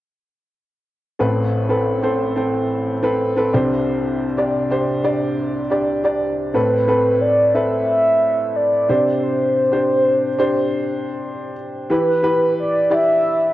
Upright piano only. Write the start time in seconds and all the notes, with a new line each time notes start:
1.19 A1 A2 C4 A4 B4
1.69 C4 A4 B4
2.03 C4 A4 C5
2.36 C4 A4 C5
3.03 C4 A4 B4
3.37 C4 A4 B4
3.53 C2 C3 D4 G4 C5
4.37 D4 G4 D5
4.70 D4 G4 C5
5.04 D4 G4 D5
5.70 D4 G4 D5
6.04 D4 G4 D5
6.54 A2 C4 A4 B4
6.88 C4 A4 B4
7.54 C4 A4 B4
8.89 C3 D4 G4 C5
9.72 D4 G4 C5
10.38 D4 G4 C5
11.90 E3 E4 G4 B4
12.23 E4 G4 B4
12.90 E4 G4 D5